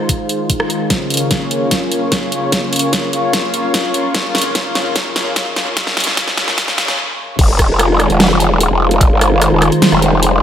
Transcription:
0.00 0.86 D#3 medium
0.00 0.86 G#3 medium
0.00 0.86 F4 medium
0.00 0.86 C5 medium
0.09 kick medium
0.09 closed hi-hat medium
0.29 closed hi-hat medium
0.50 kick loud
0.50 closed hi-hat medium
0.60 cross-stick medium
0.70 closed hi-hat soft
0.90 6.94 C#3 medium
0.90 6.94 A#3 medium
0.90 6.94 F4 medium
0.90 6.94 C#5 medium
0.90 kick loud
0.90 snare soft
0.90 closed hi-hat medium
1.10 closed hi-hat soft
1.14 closed hi-hat medium
1.17 closed hi-hat medium
1.31 kick loud
1.31 snare soft
1.31 closed hi-hat medium
1.51 closed hi-hat soft
1.71 kick loud
1.71 snare medium
1.71 closed hi-hat medium
1.92 closed hi-hat medium
2.12 kick loud
2.12 snare medium
2.12 closed hi-hat medium
2.32 closed hi-hat soft
2.52 kick loud
2.52 snare medium
2.52 closed hi-hat medium
2.73 closed hi-hat medium
2.76 closed hi-hat medium
2.79 closed hi-hat medium
2.93 kick loud
2.93 snare medium
2.93 closed hi-hat medium
3.13 closed hi-hat soft
3.33 kick loud
3.33 snare medium
3.33 closed hi-hat medium
3.54 closed hi-hat soft
3.74 kick loud
3.74 snare medium
3.74 closed hi-hat medium
3.94 closed hi-hat medium
4.15 kick loud
4.15 snare medium
4.15 closed hi-hat medium
4.35 snare medium
4.35 closed hi-hat medium
4.38 closed hi-hat medium
4.42 closed hi-hat medium
4.55 kick loud
4.55 snare medium
4.55 closed hi-hat medium
4.75 snare medium
4.75 closed hi-hat medium
4.96 kick loud
4.96 snare medium
4.96 closed hi-hat medium
5.16 snare medium
5.16 closed hi-hat medium
5.36 kick loud
5.36 snare medium
5.36 closed hi-hat medium
5.56 snare medium
5.56 closed hi-hat medium
5.77 kick loud
5.77 snare medium
5.77 closed hi-hat medium
5.87 snare medium
5.97 snare loud
5.97 closed hi-hat medium
6.00 closed hi-hat medium
6.04 snare medium
6.04 closed hi-hat medium
6.17 kick loud
6.17 snare medium
6.17 closed hi-hat medium
6.28 snare medium
6.38 snare loud
6.38 closed hi-hat medium
6.48 snare medium
6.58 kick loud
6.58 snare loud
6.58 closed hi-hat medium
6.68 snare medium
6.78 snare loud
6.78 closed hi-hat medium
6.88 snare loud
7.39 7.68 F1 loud
7.39 10.43 D#3 medium
7.39 10.43 G#3 medium
7.39 10.43 F4 medium
7.39 10.43 C5 medium
7.39 kick loud
7.39 closed hi-hat medium
7.39 crash loud
7.59 kick medium
7.59 cross-stick medium
7.59 closed hi-hat medium
7.69 8.08 F1 loud
7.79 cross-stick medium
7.79 closed hi-hat medium
8.00 cross-stick medium
8.00 closed hi-hat medium
8.10 8.52 F1 loud
8.10 closed hi-hat soft
8.20 snare loud
8.20 closed hi-hat medium
8.40 closed hi-hat medium
8.52 8.69 E1 loud
8.61 closed hi-hat medium
8.71 9.10 F1 loud
8.91 closed hi-hat soft
9.01 kick loud
9.01 closed hi-hat medium
9.11 9.50 G1 medium
9.21 cross-stick medium
9.21 closed hi-hat medium
9.42 cross-stick medium
9.42 closed hi-hat medium
9.52 9.70 F1 medium
9.62 cross-stick medium
9.62 closed hi-hat medium
9.72 closed hi-hat soft
9.82 snare loud
9.82 closed hi-hat medium
9.92 10.43 F1 medium
9.92 cross-stick medium
10.02 closed hi-hat medium
10.23 closed hi-hat medium

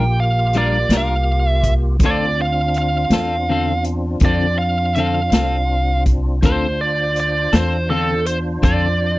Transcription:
0.00 0.86 A#1 medium
0.00 1.97 A#3 medium
0.00 1.97 F4 medium
0.00 1.97 G4 medium
0.00 0.19 G5 medium
0.20 0.56 F5 medium
0.53 0.76 G3 medium
0.53 0.77 D4 medium
0.53 0.77 F4 medium
0.53 closed hi-hat medium
0.57 0.77 A#4 medium
0.57 0.93 D5 medium
0.89 1.97 C2 medium
0.89 1.14 A#4 medium
0.89 snare loud
0.89 closed hi-hat medium
0.94 1.15 D4 soft
0.94 1.14 F4 soft
0.94 1.49 F5 loud
1.49 1.73 E5 loud
1.63 kick medium
1.63 closed hi-hat medium
1.99 3.07 D2 medium
1.99 6.40 C4 medium
1.99 6.40 D4 medium
1.99 6.40 F4 medium
1.99 kick loud
1.99 closed hi-hat medium
2.04 2.24 D3 medium
2.04 2.25 C4 medium
2.04 2.25 F4 medium
2.04 2.25 A4 medium
2.04 2.41 D5 medium
2.42 2.77 F5 medium
2.74 3.83 F5 medium
2.74 closed hi-hat medium
3.10 4.18 E2 medium
3.10 3.35 F4 soft
3.10 3.34 A4 soft
3.10 snare loud
3.10 closed hi-hat medium
3.16 3.36 C4 soft
3.49 3.71 D3 medium
3.49 3.71 C4 medium
3.49 3.72 F4 medium
3.49 3.72 A4 medium
3.84 closed hi-hat medium
4.20 5.29 F2 medium
4.20 4.45 D3 medium
4.20 kick loud
4.20 closed hi-hat medium
4.24 4.45 C4 medium
4.24 4.45 F4 medium
4.24 4.46 A4 medium
4.24 4.58 D5 medium
4.59 4.95 F5 medium
4.95 5.18 D3 medium
4.95 5.19 C4 medium
4.95 5.19 F4 medium
4.95 6.02 F5 medium
4.95 closed hi-hat medium
5.00 5.20 A4 medium
5.31 6.39 C2 medium
5.31 5.56 F4 soft
5.31 5.55 A4 soft
5.31 snare loud
5.31 closed hi-hat medium
5.36 5.56 C4 soft
6.06 kick medium
6.06 closed hi-hat medium
6.41 7.50 D2 medium
6.41 6.65 D3 medium
6.41 6.66 C4 medium
6.41 9.19 D4 medium
6.41 9.19 F4 medium
6.41 6.66 F4 medium
6.41 6.66 A4 medium
6.41 9.19 C5 medium
6.41 kick medium
6.41 closed hi-hat medium
6.46 6.79 C5 medium
6.81 7.19 D5 medium
7.16 closed hi-hat medium
7.20 7.57 D5 medium
7.53 8.61 E2 medium
7.53 7.77 C4 soft
7.53 7.76 F4 soft
7.53 7.76 A4 soft
7.53 7.90 C5 medium
7.53 snare loud
7.53 closed hi-hat medium
7.90 8.13 D3 soft
7.90 8.13 C4 medium
7.90 8.13 F4 medium
7.90 8.26 A4 medium
7.90 8.14 A4 medium
8.26 8.37 C5 medium
8.26 closed hi-hat medium
8.63 9.19 F2 medium
8.63 8.86 D3 medium
8.63 8.86 C4 medium
8.63 8.86 F4 medium
8.63 8.87 A4 medium
8.63 9.19 D5 medium
8.63 kick medium
8.63 closed hi-hat medium

